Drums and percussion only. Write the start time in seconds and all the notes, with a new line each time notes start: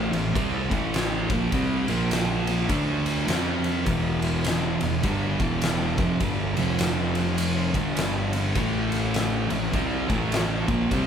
0.13 ride
0.35 kick, ride
0.71 kick, ride
0.94 snare, ride
1.30 kick, ride
1.52 kick, ride
1.88 ride
2.11 snare, ride
2.47 ride
2.69 kick, ride
3.06 ride
3.28 snare, ride
3.64 ride
3.86 kick, ride
4.22 ride
4.44 snare, ride
4.81 ride
5.03 kick, ride
5.40 kick, ride
5.62 snare, ride
5.98 kick, ride
6.20 kick, ride
6.57 ride
6.79 snare, ride
7.15 ride
7.38 ride
7.74 kick, ride
7.97 snare, ride
8.33 ride
8.55 kick, ride
8.92 ride
9.14 snare, ride
9.50 ride
9.73 kick, ride
10.10 kick, ride
10.32 snare, ride
10.68 kick, ride
10.91 kick, ride